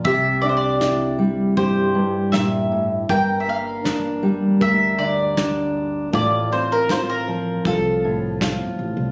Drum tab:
SD |--o---o-|--o---o-|--o---o-|
BD |o-o-o-o-|o-o-o-o-|o-o-o-o-|